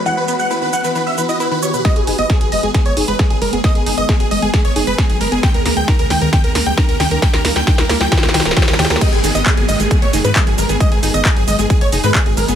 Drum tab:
CC |--------------------------------|--------------------------------|--------------------------------|--------------------------------|
HH |--------------------------------|x-x-o-x-x-x-o-x-x-x-o-x-x-x-o-x-|x-x-o-x-x-x-o-x-x-x-o-x-x-x-o-x-|x-x-o-x-x-x-o-x-x-x-o-x-x-x-o-x-|
SH |x---x-x-x---x-x-x---x-x-x---x-x-|--------------------------------|--------------------------------|--------------------------------|
CP |--------------------------------|--------------------------------|--------------------------------|--------------------------------|
SD |--------------------------------|o-------o-------o-------o-------|o-------o-------o-------o-------|o---o---o---o---o---o---o---o---|
BD |--------------------------------|o-------o-------o-------o-------|o-------o-------o-------o-------|o-------o-------o-------o-------|

CC |--------------------------------|x-------------------------------|--------------------------------|
HH |x-x-o-x-x-x-o-x-x-x-o-x-x-x-o-x-|x-x-o-x-x-x-o-x-x-x-o-x-x-x-o-x-|x-x-o-x-x-x-o-x-x-x-o-x-x-x-o-x-|
SH |--------------------------------|x---x-x-x---x-x-x---x-x-x---x-x-|x---x-x-x---x-x-x---x-x-x---x-x-|
CP |--------------------------------|--------x---------------x-------|--------x---------------x-------|
SD |o-o-o-o-o-o-o-o-oooooooooooooooo|--------------------------------|--------------------------------|
BD |o-------o-------o-------o-------|o-------o-------o-------o-------|o-------o-------o-------o-------|